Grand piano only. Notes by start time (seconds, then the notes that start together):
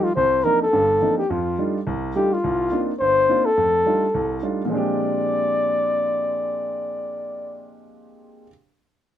0.17 C2 C3
0.45 F3 A#3 C4 D4 D#4
0.73 G1 G2
1.01 F3 A#3 C4 D4 D#4
1.30 F2
1.59 G3 A3 D4 D#4 F4
1.87 C2
2.16 G3 A3 D4 D#4 F4
2.44 C2
2.72 A#3 C4 D4 D#4 F4
3.01 G1
3.29 A#3 C4 D4 D#4 F4
3.57 F2 A3
3.86 G3 A3 D4 D#4 F4
4.14 C2
4.43 G3 A3 D4 D#4 F4
4.65 A#2 F3
4.70 G#3 C4
4.74 D4 G4